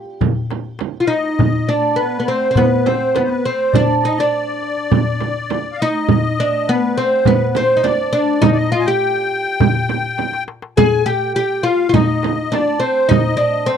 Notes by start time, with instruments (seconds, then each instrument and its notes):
Already playing: oud G4
0.06 darbuka ka
0.21 darbuka dum, frame drum
0.35 darbuka ka
0.50 darbuka tek, frame drum
0.65 darbuka ka
0.79 darbuka tek, frame drum
0.94 darbuka ka
1.00 oud F4, accordion F5
1.07 oud D#4, accordion D#5
1.39 darbuka dum, frame drum
1.67 oud D4, accordion D5
1.96 oud B3, accordion B4
2.20 oud B3
2.28 oud C4, accordion C5
2.42 darbuka ka
2.51 oud C4
2.55 oud B3, accordion B4, darbuka dum, frame drum
2.71 darbuka ka
2.85 oud C4, accordion C5, darbuka tek, frame drum
3.00 darbuka ka
3.14 oud B3, accordion B4, darbuka tek, frame drum
3.23 accordion C5
3.28 accordion B4
3.45 oud C4, accordion C5, darbuka ka
3.73 oud D4, accordion D5, darbuka dum, frame drum
4.03 oud D#4, accordion D#5
4.18 oud D4, accordion D5
4.32 darbuka ka
4.62 darbuka ka
4.77 darbuka ka
4.91 darbuka dum, frame drum
5.06 darbuka ka
5.20 darbuka tek, frame drum
5.36 darbuka ka
5.50 darbuka tek, frame drum
5.72 accordion F5
5.79 oud D#4, accordion D#5, darbuka ka
6.09 frame drum, darbuka dum
6.40 oud D4
6.67 oud B3, accordion B4, darbuka ka
6.96 oud C4, accordion C5
7.12 darbuka ka
7.25 oud B3, accordion B4, darbuka dum, frame drum
7.41 darbuka ka
7.55 oud C4, accordion C5, darbuka tek, frame drum
7.77 oud D#4
7.83 oud D4, accordion D5, darbuka tek, frame drum
8.13 oud D4, accordion D5, darbuka ka
8.41 oud D#4, accordion D#5, frame drum, darbuka dum
8.51 accordion D5
8.57 accordion D#5
8.72 oud F4
8.79 accordion G#5
8.85 oud G4, accordion G5
9.03 darbuka ka
9.18 darbuka ka
9.32 darbuka ka
9.47 darbuka ka
9.60 darbuka dum, frame drum
9.75 darbuka ka
9.89 darbuka tek, frame drum
10.04 darbuka ka
10.18 darbuka tek, frame drum
10.33 darbuka ka
10.48 darbuka tek
10.62 darbuka ka
10.77 oud G#4, accordion G#5, darbuka dum, frame drum
11.05 oud G4, accordion G5, darbuka ka
11.34 oud G4, accordion G5
11.63 oud F4, accordion F5
11.89 oud F4, accordion D#5
11.94 oud D#4, darbuka dum, frame drum
12.23 darbuka tek, frame drum
12.39 darbuka ka
12.52 oud D4, accordion D5, darbuka tek, frame drum
12.68 darbuka ka
12.80 oud C4, accordion C5
13.09 oud D#4, accordion D#5, darbuka dum, frame drum
13.37 oud D4, darbuka ka
13.66 oud C4, accordion C5